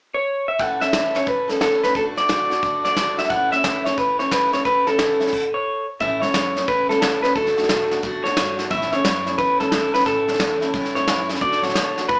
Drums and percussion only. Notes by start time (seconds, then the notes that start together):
0.59 kick, snare
0.81 snare
0.93 kick, snare, hi-hat pedal
1.15 snare
1.26 kick, snare
1.49 snare
1.61 kick, snare, hi-hat pedal
1.84 snare
1.95 kick, snare
2.17 snare
2.29 kick, snare, hi-hat pedal
2.51 snare
2.63 kick, snare
2.85 snare
2.97 kick, snare, hi-hat pedal
3.18 snare
3.25 snare
3.30 kick, snare
3.52 snare
3.64 kick, snare, hi-hat pedal
3.86 snare
3.98 kick, snare
4.20 snare
4.31 kick, snare, hi-hat pedal
4.53 snare
4.65 kick, snare
4.87 snare
4.99 kick, snare, hi-hat pedal
5.21 snare
5.27 snare
5.33 kick, crash
6.00 kick, snare
6.22 snare
6.34 snare, hi-hat pedal
6.56 snare
6.68 kick, snare
6.90 snare
7.02 snare, hi-hat pedal
7.24 snare
7.36 kick, snare
7.47 snare
7.58 snare
7.63 snare
7.69 snare, hi-hat pedal
7.91 snare
8.03 kick, snare
8.25 snare
8.37 snare, hi-hat pedal
8.59 snare
8.70 kick, snare
8.82 snare
8.93 snare
9.05 snare, hi-hat pedal
9.27 snare
9.38 kick, snare
9.60 snare
9.72 snare, hi-hat pedal
9.94 snare
10.00 snare
10.06 kick, snare
10.28 snare
10.34 snare
10.40 snare, hi-hat pedal
10.62 snare
10.74 kick, snare
10.85 snare
10.96 snare
11.08 snare, hi-hat pedal
11.29 snare
11.36 snare
11.41 kick, snare
11.52 snare
11.63 snare
11.69 snare
11.75 snare, hi-hat pedal
11.98 snare
12.09 kick, snare